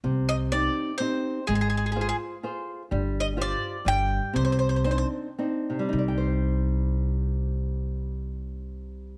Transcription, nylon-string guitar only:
\new Staff \with { instrumentName = "Nylon-string guitar" } { \time 3/4 \key c \minor \tempo 4 = 121 c4 <c' ees' g'>4 <c' ees' g'>4 | aes4 <f' aes' c''>4 <f' aes' c''>4 | g4 <f' g' c''>4 g4 | c4 <c' d' ees'>4 <c' d' ees'>4 |
<c g ees' c'' d'' g''>2.~ | <c g ees' c'' d'' g''>2. | }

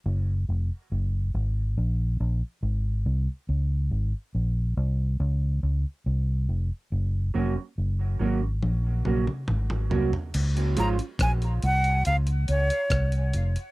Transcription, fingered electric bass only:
\new Staff \with { instrumentName = "Fingered electric bass" } { \clef bass \time 4/4 \key des \major \tempo 4 = 70 ges,,8 f,,16 r16 ges,,8 aes,,8 bes,,8 bes,,16 r16 aes,,8 c,16 r16 | des,8 aes,,16 r16 bes,,8 c,8 des,8 des,16 r16 c,8 f,,16 r16 | ges,,8 f,,16 r16 ges,,8 aes,,8 bes,,8 bes,,16 r16 aes,,8 c,16 r16 | des,8 aes,,16 r16 bes,,8 c,8 des,8 des,16 r16 c,8 f,,16 r16 | }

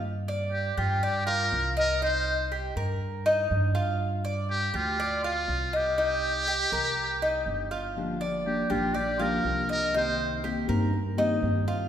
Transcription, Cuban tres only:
\new Staff \with { instrumentName = "Cuban tres" } { \time 4/4 \key g \minor \tempo 4 = 121 r8 d''4 g'8 d''8 f'4 ees''8 | ees'4 g'8 bes'4 ees'4 f'8~ | f'8 d''4 g'8 d''8 f'4 ees''8 | ees'4 g'8 bes'4 ees'4 f'8~ |
f'8 d''4 g'8 d''8 f'4 ees''8 | ees'4 g'8 bes'4 ees'4 f'8 | }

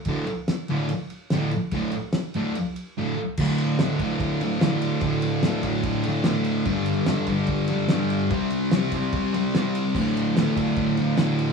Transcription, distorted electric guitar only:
\new Staff \with { instrumentName = "Distorted electric guitar" } { \clef bass \time 4/4 \key g \major \tempo 4 = 146 <d, a, d>8 r4 <d, a, d>8 r4 <d, a, d>8 r8 | <d, a, d>8 r4 <d, a, d>8 r4 <d, a, d>8 r8 | <d, a, d>4 <d, a, d>8 <a, d>4 <a, d>8 <d, a, d>4 | <d, a, d>4 <d, a, d>8 <a, d>4 <a, d>8 <d, a, d>4 |
<g, d g>4 <g, d g>8 <d g>4 <d g>8 <g, d g>4 | <c g c'>4 <c g c'>8 <g c'>4 <g c'>8 <c g c'>4 | <d, a, d>4 <d, a, d>8 <a, d>4 <a, d>8 <d, a, d>4 | }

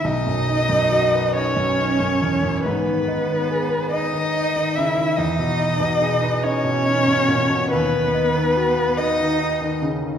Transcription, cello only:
\new Staff \with { instrumentName = "Cello" } { \time 6/8 \key b \major \tempo 4. = 47 dis'4. cis'4. | b4. dis'4 e'8 | dis'4. cis'4. | b4. dis'4 r8 | }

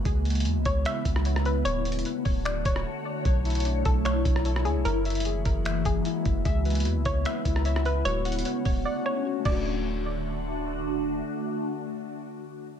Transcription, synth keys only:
\new Staff \with { instrumentName = "Synth keys" } { \time 4/4 \key d \lydian \tempo 4 = 150 r1 | r1 | cis''8 e'8 d'4 e'8 d'8 cis''8 e'8 | e'8 e''8 gis'4 e''4 e'4 |
e''8 b'8 e'4 b'8 e'8 e''8 b'8 | fis'8 fis''8 cis''4 fis''4 fis'8 <a d' fis'>8~ | <a d' fis'>1~ | <a d' fis'>1 | }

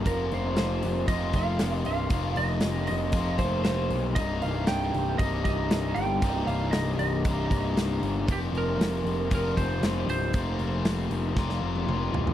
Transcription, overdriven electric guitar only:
\new Staff \with { instrumentName = "Overdriven electric guitar" } { \clef bass \time 4/4 \key f \dorian \tempo 4 = 117 <f, c f bes c' f'>2 <f, c f bes c' f'>2 | <f, c f bes c' f'>2 <f, c f bes c' f'>2 | <c, g, c g bes ees'>2 <c, g, c g bes ees'>2 | <c, g, c g bes ees'>2 <c, g, c g bes ees'>2 |
<f, c f bes c' f'>2 <f, c f bes c' f'>2 | <f, c f bes c' f'>2 <f, c f bes c' f'>2 | }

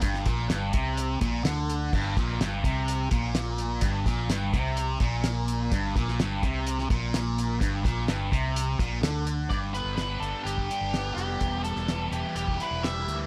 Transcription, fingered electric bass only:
\new Staff \with { instrumentName = "Fingered electric bass" } { \clef bass \time 4/4 \key e \phrygian \tempo 4 = 127 g,,8 bes,,8 g,,8 c,4 bes,,8 d,4 | g,,8 bes,,8 g,,8 c,4 bes,,4. | g,,8 bes,,8 g,,8 c,4 bes,,4. | g,,8 bes,,8 g,,8 c,4 bes,,4. |
g,,8 bes,,8 g,,8 c,4 bes,,8 d,4 | g,,8. g,,8. g,,16 r16 g,,8 r16 g,,8. f,,8 | e,,8. e,,8. e,,16 r16 e,,8 r16 e,,8. d,8 | }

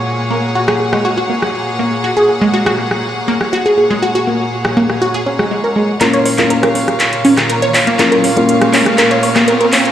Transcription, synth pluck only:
\new Staff \with { instrumentName = "Synth pluck" } { \time 4/4 \key bes \minor \tempo 4 = 121 r8 bes16 r16 ges'16 aes'16 aes'16 aes16 ges'16 ges'16 bes16 r8. bes16 r16 | ges'16 aes'16 aes'16 aes16 ges'16 ges'16 bes16 r8. bes16 r16 ges'16 aes'16 aes'16 aes16 | ges'16 ges'16 bes16 r8. bes16 r16 ges'16 aes'16 des'16 aes16 aes16 bes'16 aes16 r16 | bes'16 des''16 des''16 bes16 bes'16 bes'16 des'16 r8. des'16 r16 bes'16 des''16 des''16 bes16 |
bes'16 bes'16 des'16 r8. des'16 r16 bes'16 des''16 des''16 bes16 bes'16 bes'16 des'16 r16 | }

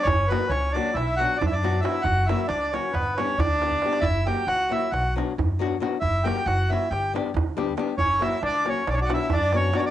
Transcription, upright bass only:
\new Staff \with { instrumentName = "Upright bass" } { \clef bass \time 9/8 \tempo 4. = 91 fis,,4 cis,4 b,,4 fis,4. | fis,,4 cis,4 g,,4 d,4. | fis,,4 cis,4 b,,4 fis,4. | fis,,4 fis,,4 g,,4 d,4. |
fis,,4 cis,4 b,,4 fis,4. | }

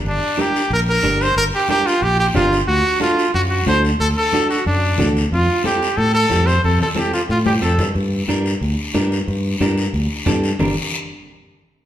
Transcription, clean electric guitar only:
\new Staff \with { instrumentName = "Clean electric guitar" } { \time 4/4 \key g \minor \tempo 4 = 182 r4 <d' g' bes'>8 r4. <d' g' bes'>8 r8 | r4 <d' g' bes'>8 r4. <d' g' bes'>8 r8 | r4 <d' fis' a'>8 r4. <d' fis' a'>8 r8 | r4 <d' fis' a'>8 r4. <d' fis' a'>8 r8 |
r4 <c' f' a'>8 r4. <c' f' g'>8 r8 | r4 <c' f' a'>8 r4. <c' f' a'>8 r8 | r4 <d' g' bes'>8 r4. <d' g' bes'>8 r8 | r4 <d' g' bes'>8 r4. <d' g' a'>8 r8 |
<d' g' bes'>8 r2. r8 | }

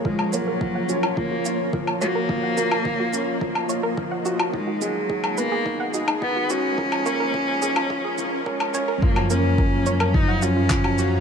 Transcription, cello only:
\new Staff \with { instrumentName = "Cello" } { \time 4/4 \key fis \major \tempo 4 = 107 gis8 fis4. ais4 r8 ais8~ | ais2.~ ais8 r8 | gis8 fis4 ais4 r8 b8 cis'8~ | cis'2. gis4 |
ais8 cis'4. dis'8 cis'4. | }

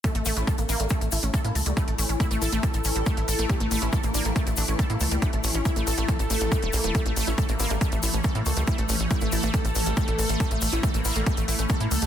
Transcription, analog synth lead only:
\new Staff \with { instrumentName = "Analog synth lead" } { \time 4/4 \key a \major \tempo 4 = 139 a'16 a16 a16 e'16 a16 a16 e'16 a16 a16 a16 e'16 a16 a16 e'16 a16 a16 | e'16 a16 a16 r16 a16 a16 e'16 a16 a'4.~ a'16 r16 | g'16 a16 a16 e'16 a16 a16 d'16 a16 a16 a16 d'16 a16 a16 e'16 a16 a16 | d'16 a16 a16 r16 a16 a16 a'16 a16 a'4.~ a'16 r16 |
a'16 a16 a16 e'16 a16 a16 e'16 a16 a16 a16 e'16 a16 a16 e'16 a16 a16 | e'16 a16 a16 r16 a16 a16 e'16 a16 a'4.~ a'16 r16 | a'16 a16 a16 e'16 a16 a16 e'16 a16 a16 a16 e'16 a16 a16 e'16 a16 a16 | }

